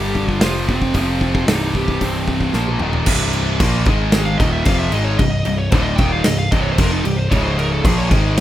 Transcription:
0.00 0.38 G1 medium
0.00 0.41 G2 medium
0.00 0.41 D3 loud
0.00 0.41 G3 loud
0.00 0.32 G4 loud
0.15 kick medium
0.28 0.41 F4 loud
0.28 kick medium
0.40 0.90 F1 loud
0.40 0.94 F2 medium
0.40 0.94 C3 medium
0.40 0.94 F3 loud
0.40 0.69 F4 medium
0.40 snare loud
0.40 open hi-hat medium
0.68 1.50 C4 medium
0.68 kick medium
0.82 kick medium
0.94 1.44 F1 medium
0.94 1.47 F2 medium
0.94 1.48 C3 loud
0.94 1.48 F3 loud
0.94 kick medium
0.94 open hi-hat soft
1.21 kick medium
1.35 kick medium
1.47 2.50 C1 loud
1.47 2.53 C2 medium
1.47 2.54 G2 medium
1.47 2.54 C3 medium
1.47 1.76 D#4 medium
1.47 snare loud
1.47 open hi-hat medium
1.75 2.03 G4 loud
1.75 kick medium
1.88 kick medium
2.01 2.52 C4 medium
2.01 kick medium
2.01 open hi-hat soft
2.28 kick medium
2.41 kick medium
2.53 2.79 A#1 medium
2.53 2.80 A#2 medium
2.53 2.80 F3 medium
2.53 2.81 A#3 medium
2.53 snare medium
2.67 high tom medium
2.80 3.05 D#1 medium
2.80 3.07 D#2 medium
2.80 3.07 A#2 medium
2.80 3.07 D#3 loud
2.80 mid tom medium
2.93 floor tom medium
3.06 3.56 C1 medium
3.06 3.59 C2 medium
3.06 3.60 G2 loud
3.06 3.60 C3 loud
3.06 kick medium
3.06 crash loud
3.06 crash medium
3.33 crash medium
3.60 3.85 A#1 loud
3.60 3.87 A#2 medium
3.60 3.87 F3 medium
3.60 3.87 A#3 medium
3.60 kick loud
3.60 crash loud
3.85 4.36 G#1 loud
3.85 4.40 G#2 medium
3.85 4.40 D#3 loud
3.85 4.40 G#3 loud
3.85 kick loud
3.85 crash medium
4.12 snare loud
4.12 crash medium
4.26 4.39 F5 medium
4.38 4.65 D#1 medium
4.38 4.65 D#2 medium
4.38 4.65 A#2 loud
4.38 4.66 D#3 loud
4.38 4.52 D#5 loud
4.38 kick loud
4.38 crash medium
4.53 4.65 E5 medium
4.65 4.91 F1 loud
4.65 4.92 F2 medium
4.65 4.92 C3 medium
4.65 4.92 F3 loud
4.65 4.79 F5 loud
4.65 kick loud
4.65 crash medium
4.79 4.92 E5 medium
4.92 5.17 G#1 medium
4.92 5.18 G#2 loud
4.92 5.19 D#3 loud
4.92 5.19 G#3 loud
4.92 5.04 D#5 loud
4.92 crash medium
5.04 5.18 C#5 medium
5.18 5.44 C1 medium
5.18 5.41 C2 medium
5.18 5.41 G2 medium
5.18 5.56 D#5 loud
5.18 kick medium
5.18 crash medium
5.45 5.70 C1 medium
5.45 5.67 C2 medium
5.45 5.67 G2 medium
5.45 crash medium
5.59 5.71 C#5 medium
5.71 5.97 D1 loud
5.71 5.98 D2 medium
5.71 5.99 A2 loud
5.71 5.99 D3 loud
5.71 5.82 C5 medium
5.71 kick loud
5.71 crash loud
5.83 5.97 D#5 medium
5.96 6.23 D#1 medium
5.96 6.25 D#2 loud
5.96 6.25 A#2 loud
5.96 6.12 G5 loud
5.96 kick loud
5.96 crash medium
6.00 6.25 D#3 loud
6.12 6.24 F5 medium
6.24 6.50 C1 medium
6.24 6.47 C2 medium
6.24 6.47 G2 medium
6.24 6.37 D#5 medium
6.24 snare loud
6.24 crash medium
6.39 6.51 F5 loud
6.51 6.77 C1 medium
6.51 6.77 C2 medium
6.51 6.78 G2 loud
6.51 6.77 C3 loud
6.51 6.60 D#5 loud
6.51 kick loud
6.51 crash medium
6.61 6.69 C#5 medium
6.72 6.79 C5 medium
6.78 7.03 F1 loud
6.78 7.04 F2 medium
6.78 7.04 C3 loud
6.78 7.05 F3 loud
6.78 6.91 A#4 medium
6.78 kick loud
6.78 crash medium
6.92 7.04 D#4 medium
7.04 7.29 C1 medium
7.04 7.26 C2 medium
7.04 7.26 G2 medium
7.04 7.18 G4 medium
7.04 crash medium
7.17 7.30 C5 loud
7.31 7.80 C#1 loud
7.31 7.83 C#2 loud
7.31 7.83 G#2 medium
7.31 7.83 C#3 loud
7.31 7.43 C#5 medium
7.31 kick loud
7.31 crash medium
7.43 7.57 C5 medium
7.58 7.71 A#4 loud
7.58 crash medium
7.73 7.85 A4 medium
7.83 8.09 A#1 loud
7.83 8.09 A#2 loud
7.83 8.09 F3 loud
7.83 8.10 A#3 loud
7.83 7.98 G#4 medium
7.83 kick loud
7.83 crash loud
7.98 8.06 C#5 medium
8.10 8.40 G#1 loud
8.10 8.40 G#2 loud
8.10 8.40 D#3 loud
8.10 8.40 G#3 loud
8.10 kick loud
8.10 crash medium

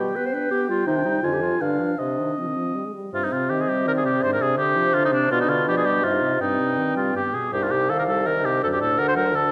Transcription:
0.00 0.17 G3 soft
0.00 0.17 G4 medium
0.00 0.83 G5 soft
0.16 0.35 B3 soft
0.16 0.27 B4 medium
0.26 0.35 C5 medium
0.34 0.53 D4 soft
0.34 0.50 B4 medium
0.51 0.71 B3 soft
0.51 0.69 G4 medium
0.69 0.87 G3 soft
0.69 0.86 F4 medium
0.87 1.17 C3 medium
0.87 1.07 D#3 soft
0.87 0.98 D#4 medium
0.87 1.26 G5 soft
0.97 1.05 D4 medium
1.05 1.23 G3 soft
1.05 1.22 D#4 medium
1.23 1.54 F2 soft
1.23 1.44 D3 soft
1.23 1.34 F4 medium
1.23 1.63 G#5 soft
1.33 1.41 G4 medium
1.42 1.60 F3 soft
1.42 1.62 F4 medium
1.61 1.92 G2 soft
1.61 1.81 D3 soft
1.61 1.97 D4 medium
1.61 2.00 F5 soft
1.80 1.99 F3 soft
1.98 2.31 C3 soft
1.98 2.20 C3 soft
1.98 2.39 D4 soft
1.98 2.95 D#5 soft
2.19 2.38 D#3 soft
2.38 2.49 F3 soft
2.38 2.76 C4 soft
2.48 2.56 D#3 soft
2.56 2.77 F3 soft
2.75 2.87 G3 soft
2.85 2.94 G#3 soft
2.94 3.12 G3 soft
3.13 3.33 G2 soft
3.13 5.27 C3 soft
3.13 4.25 C4 soft
3.13 3.25 F4 medium
3.24 3.34 D#4 soft
3.32 3.52 C3 soft
3.32 3.51 F4 medium
3.50 3.70 D#3 soft
3.50 3.62 G4 medium
3.50 3.89 D#5 soft
3.61 3.70 G#4 soft
3.68 3.88 G3 soft
3.68 3.87 G4 soft
3.86 4.06 D#3 soft
3.86 3.92 A#4 medium
3.86 4.59 D5 soft
3.97 4.01 G#4 soft
4.04 4.22 C3 soft
4.04 4.24 G4 medium
4.23 4.42 G#2 soft
4.23 6.05 D4 soft
4.23 4.32 C5 medium
4.33 4.43 A#4 medium
4.41 4.59 C3 soft
4.41 4.57 G#4 medium
4.58 4.78 D3 medium
4.58 4.95 G4 medium
4.58 5.33 C5 medium
4.77 4.96 F3 soft
4.94 5.13 D3 medium
4.94 5.03 F4 medium
5.05 5.09 D#4 medium
5.12 5.30 C3 soft
5.12 5.30 D4 medium
5.31 5.50 B2 medium
5.31 6.05 B2 medium
5.31 5.40 F4 medium
5.31 5.67 D5 medium
5.40 5.51 D#4 medium
5.49 5.69 D3 soft
5.49 5.67 F4 medium
5.68 5.87 F3 soft
5.68 5.76 G4 medium
5.68 6.06 D5 soft
5.77 5.87 G#4 medium
5.85 6.04 G3 soft
5.85 6.05 G4 medium
6.03 6.23 G2 soft
6.03 6.42 C3 soft
6.03 6.39 D#4 soft
6.03 6.40 F4 medium
6.03 6.42 D#5 soft
6.22 6.40 C3 soft
6.40 7.34 G2 soft
6.40 6.60 G2 soft
6.40 7.15 C4 soft
6.40 6.95 D#4 medium
6.40 7.34 G5 soft
6.59 6.79 C3 soft
6.78 6.98 D#3 soft
6.96 7.14 G3 soft
6.96 7.15 F4 soft
7.14 7.35 G2 soft
7.14 7.33 B3 soft
7.14 7.36 G4 soft
7.33 7.52 B2 soft
7.33 7.52 G#4 soft
7.51 8.59 C2 medium
7.51 7.73 G2 soft
7.51 8.63 D#4 soft
7.51 7.64 G4 medium
7.63 7.73 F4 soft
7.71 7.92 C3 soft
7.71 7.91 G4 medium
7.89 8.10 D#3 soft
7.89 7.98 A4 medium
7.89 8.28 F5 soft
7.99 8.03 A#4 medium
8.08 8.28 G3 soft
8.08 8.27 A4 medium
8.26 8.47 D#3 soft
8.26 8.46 A#4 medium
8.26 8.64 D#5 soft
8.45 8.63 C3 soft
8.45 8.63 G4 medium
8.62 9.52 D2 medium
8.62 8.82 F#2 soft
8.62 9.52 D4 soft
8.62 8.67 A4 medium
8.62 9.00 D5 soft
8.73 8.81 G4 medium
8.81 9.00 A2 soft
8.81 9.00 A4 medium
8.98 9.18 D3 soft
8.98 9.07 A#4 medium
8.98 9.34 F#5 medium
9.08 9.12 C5 medium
9.16 9.35 F#3 soft
9.16 9.36 A#4 medium
9.34 9.52 D3 medium
9.34 9.52 A4 medium
9.34 9.52 A5 medium

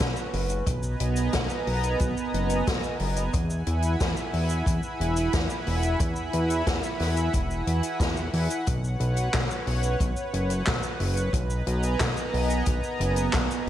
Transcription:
0.00 0.15 B1 medium
0.00 0.64 C#4 medium
0.00 0.64 F#4 medium
0.00 0.64 B4 medium
0.00 kick loud
0.00 snare loud
0.00 cabasa medium
0.16 cabasa soft
0.33 0.62 F#1 loud
0.33 open hi-hat medium
0.50 closed hi-hat medium
0.50 cabasa medium
0.67 0.96 B1 medium
0.67 3.31 B3 medium
0.67 3.31 B4 medium
0.67 3.31 D#5 medium
0.67 8.63 G#5 medium
0.67 3.31 A#5 medium
0.67 kick loud
0.67 closed hi-hat loud
0.67 cabasa medium
0.83 cabasa soft
1.00 1.29 B1 loud
1.00 closed hi-hat loud
1.16 closed hi-hat medium
1.16 cabasa medium
1.33 1.48 B1 loud
1.33 kick loud
1.33 snare loud
1.33 closed hi-hat medium
1.33 cabasa medium
1.50 cabasa medium
1.67 1.96 B1 medium
1.67 open hi-hat medium
1.84 closed hi-hat medium
1.84 cabasa medium
2.00 2.15 B1 medium
2.00 kick loud
2.00 closed hi-hat medium
2.00 cabasa medium
2.17 cabasa soft
2.33 2.63 F#1 loud
2.33 closed hi-hat medium
2.50 closed hi-hat medium
2.50 cabasa medium
2.67 2.82 B1 medium
2.67 kick loud
2.67 snare loud
2.67 closed hi-hat loud
2.67 cabasa medium
2.84 cabasa soft
3.00 3.29 F#1 loud
3.00 open hi-hat medium
3.16 closed hi-hat medium
3.16 cabasa medium
3.33 3.63 E2 loud
3.33 8.63 E4 medium
3.33 8.63 E5 medium
3.33 11.30 F#5 medium
3.33 8.63 B5 medium
3.33 kick loud
3.33 closed hi-hat loud
3.33 cabasa medium
3.50 cabasa soft
3.67 3.96 E2 loud
3.67 closed hi-hat medium
3.82 closed hi-hat medium
3.82 cabasa medium
4.00 4.15 E2 loud
4.00 kick loud
4.00 snare loud
4.00 closed hi-hat loud
4.00 cabasa medium
4.17 cabasa medium
4.33 4.62 E2 medium
4.33 open hi-hat medium
4.49 closed hi-hat medium
4.49 cabasa medium
4.66 4.81 E2 medium
4.66 kick loud
4.66 closed hi-hat medium
4.66 cabasa medium
4.83 cabasa soft
5.00 5.29 E1 loud
5.00 closed hi-hat medium
5.16 closed hi-hat medium
5.16 cabasa medium
5.33 5.48 E2 medium
5.33 kick loud
5.33 snare loud
5.33 closed hi-hat medium
5.33 cabasa medium
5.50 cabasa medium
5.67 5.96 E1 loud
5.67 open hi-hat medium
5.83 closed hi-hat medium
5.83 cabasa medium
6.00 6.29 E2 medium
6.00 kick loud
6.00 closed hi-hat loud
6.00 cabasa medium
6.16 cabasa soft
6.33 6.62 E2 loud
6.33 closed hi-hat medium
6.50 closed hi-hat medium
6.50 cabasa medium
6.67 6.81 E2 loud
6.67 kick loud
6.67 snare loud
6.67 closed hi-hat medium
6.67 cabasa medium
6.83 cabasa medium
7.00 7.29 E2 medium
7.00 snare soft
7.00 open hi-hat medium
7.17 closed hi-hat medium
7.17 cabasa medium
7.34 7.63 E1 loud
7.34 kick loud
7.34 closed hi-hat medium
7.34 cabasa medium
7.50 cabasa soft
7.67 7.81 E2 medium
7.67 closed hi-hat medium
7.83 closed hi-hat medium
7.83 cabasa medium
8.00 8.29 E2 medium
8.00 kick loud
8.00 snare loud
8.00 closed hi-hat medium
8.00 cabasa medium
8.17 cabasa soft
8.33 8.48 E2 loud
8.33 open hi-hat medium
8.50 closed hi-hat medium
8.50 cabasa medium
8.67 8.96 B1 loud
8.67 13.69 B4 medium
8.67 11.31 C#5 medium
8.67 kick loud
8.67 closed hi-hat medium
8.67 cabasa medium
8.84 cabasa soft
9.00 9.29 B1 medium
9.00 closed hi-hat medium
9.17 closed hi-hat medium
9.17 cabasa medium
9.33 9.48 B1 loud
9.33 kick loud
9.33 snare loud
9.33 clap loud
9.33 closed hi-hat medium
9.33 cabasa medium
9.51 cabasa medium
9.67 9.96 B1 medium
9.67 open hi-hat medium
9.83 closed hi-hat medium
9.83 cabasa medium
10.00 10.15 B1 medium
10.00 kick loud
10.00 closed hi-hat medium
10.00 cabasa medium
10.16 cabasa soft
10.33 10.62 F#1 medium
10.33 closed hi-hat medium
10.50 closed hi-hat medium
10.50 cabasa medium
10.66 10.82 B1 medium
10.66 kick loud
10.66 snare loud
10.66 clap medium
10.66 closed hi-hat medium
10.66 cabasa medium
10.83 cabasa soft
11.00 11.29 F#1 loud
11.00 open hi-hat medium
11.17 closed hi-hat medium
11.17 cabasa medium
11.33 11.62 B1 loud
11.33 13.69 B3 medium
11.33 13.69 D#5 medium
11.33 13.69 G#5 medium
11.33 13.69 A#5 medium
11.33 kick loud
11.33 closed hi-hat medium
11.33 cabasa medium
11.50 cabasa soft
11.67 11.96 B1 loud
11.67 closed hi-hat medium
11.83 closed hi-hat medium
11.83 cabasa medium
12.00 12.15 B1 loud
12.00 kick loud
12.00 snare loud
12.00 clap loud
12.00 closed hi-hat medium
12.00 cabasa medium
12.17 cabasa soft
12.33 12.62 B1 medium
12.33 open hi-hat medium
12.50 closed hi-hat medium
12.50 cabasa medium
12.66 12.81 B1 medium
12.66 kick loud
12.66 closed hi-hat medium
12.66 cabasa medium
12.83 cabasa medium
13.00 13.29 F#1 medium
13.00 closed hi-hat medium
13.16 closed hi-hat medium
13.16 cabasa medium
13.33 13.48 B1 medium
13.33 kick loud
13.33 snare loud
13.33 clap medium
13.33 closed hi-hat medium
13.33 cabasa medium
13.51 cabasa medium

